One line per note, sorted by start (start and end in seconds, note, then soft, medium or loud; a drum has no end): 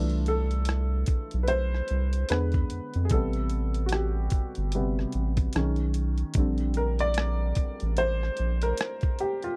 0.00 1.05 C2 loud
0.00 1.05 E3 soft
0.00 1.06 A3 soft
0.00 1.06 D4 medium
0.00 0.10 F4 soft
0.00 0.28 A4 medium
0.10 closed hi-hat soft
0.26 1.47 A4 medium
0.26 closed hi-hat medium
0.51 closed hi-hat soft
0.65 cross-stick medium
0.65 closed hi-hat medium
1.06 1.18 B1 soft
1.06 kick medium
1.06 closed hi-hat medium
1.31 1.82 B1 medium
1.31 closed hi-hat soft
1.43 1.49 B4 medium
1.48 2.32 C5 medium
1.48 closed hi-hat medium
1.74 cross-stick soft
1.88 2.25 C2 medium
1.88 closed hi-hat soft
2.13 closed hi-hat soft
2.29 2.65 E2 loud
2.29 3.07 D3 soft
2.29 3.08 G#3 soft
2.29 3.08 B3 soft
2.29 3.08 B4 medium
2.29 cross-stick medium
2.29 closed hi-hat medium
2.52 kick medium
2.52 closed hi-hat soft
2.70 2.81 F2 soft
2.70 closed hi-hat medium
2.94 3.13 F2 medium
2.94 closed hi-hat soft
3.05 3.11 G#4 medium
3.10 4.29 A1 medium
3.10 4.29 C3 soft
3.10 4.30 G3 soft
3.10 3.89 A4 medium
3.10 kick loud
3.10 closed hi-hat medium
3.14 4.30 B3 medium
3.33 closed hi-hat soft
3.50 closed hi-hat medium
3.74 closed hi-hat soft
3.86 3.92 F#4 medium
3.86 closed hi-hat medium
3.92 5.50 G4 medium
3.92 cross-stick loud
4.30 4.42 G1 soft
4.30 kick medium
4.30 closed hi-hat medium
4.55 5.06 G1 medium
4.55 closed hi-hat soft
4.72 5.10 C3 soft
4.72 5.11 G3 soft
4.72 5.11 B3 medium
4.72 closed hi-hat medium
4.99 cross-stick soft
5.12 5.49 A1 medium
5.12 closed hi-hat soft
5.37 kick medium
5.37 closed hi-hat soft
5.53 6.24 B1 loud
5.53 6.12 D#3 medium
5.53 6.12 G#3 soft
5.53 6.12 C#4 medium
5.53 cross-stick medium
5.53 closed hi-hat medium
5.76 closed hi-hat soft
5.94 closed hi-hat medium
6.18 closed hi-hat soft
6.34 7.53 A#1 loud
6.34 9.56 D3 medium
6.34 9.56 G3 soft
6.34 kick loud
6.34 closed hi-hat medium
6.38 9.56 C4 medium
6.58 closed hi-hat soft
6.74 6.99 A#4 medium
6.74 closed hi-hat medium
6.99 8.00 D5 loud
6.99 closed hi-hat soft
7.14 cross-stick loud
7.14 closed hi-hat medium
7.55 7.67 A1 soft
7.55 kick medium
7.55 closed hi-hat medium
7.80 8.30 A1 medium
7.80 closed hi-hat soft
7.97 8.64 C5 loud
7.97 closed hi-hat medium
8.23 cross-stick soft
8.37 8.73 A#1 medium
8.37 closed hi-hat soft
8.62 9.21 A#4 medium
8.62 closed hi-hat soft
8.77 cross-stick loud
8.77 closed hi-hat medium
9.01 kick medium
9.01 closed hi-hat soft
9.19 9.45 G4 medium
9.19 closed hi-hat medium
9.43 9.56 F4 medium
9.43 closed hi-hat soft